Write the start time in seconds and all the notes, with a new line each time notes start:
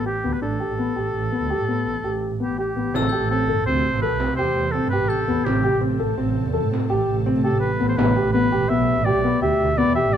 Already playing: A1
0.06 G4
0.24 D2 B3
0.33 B4
0.42 A1 D4 A4
0.60 G4
0.69 A1
0.79 B3
0.96 A1 G4
1.14 A1
1.32 B3
1.41 D2
1.50 G4
1.59 A2
1.68 B3
1.86 A1
2.04 A1 G4
2.31 A2
2.40 B3 G4
2.49 A1
2.58 G4
2.76 A1 B3
2.93 A1 C3 A3 C4 G4 A4 E6, frame drum
3.09 G4 G6
3.13 frame drum
3.20 A1
3.31 C4 A4
3.47 G1 A4
3.66 D2 C4 C5
3.93 A1
4.02 A4 B4, frame drum
4.11 C2
4.20 C4, frame drum
4.36 E2 G4 C5
4.56 E2
4.72 C4 A4
4.83 G2
4.90 G4 B4
5.01 A1
5.09 A4 G6
5.28 E2 B3
5.45 A1 C4 G4 A4, frame drum
5.64 G4, frame drum
5.74 A1
5.81 C4
5.99 A1 A4
6.18 A1 C4
6.37 frame drum
6.46 E2
6.53 A4, frame drum
6.64 A2
6.72 C4, frame drum
6.90 A1 G4
7.09 A1
7.26 C4
7.36 A2
7.44 G4 A4
7.53 A1
7.60 B4
7.80 A1 B3
7.89 C5
7.97 A1 B2 B3 G4 B4, frame drum
8.16 G4, frame drum
8.25 A1
8.33 B3 B4
8.52 E1 G4
8.69 B1 B3 E5
8.97 A1
9.05 G4 D5, frame drum
9.15 B1
9.24 B3
9.42 D2 G4 E5
9.61 D2
9.78 B3 D5
9.88 E2
9.95 G4 E5
10.05 A1
10.13 D5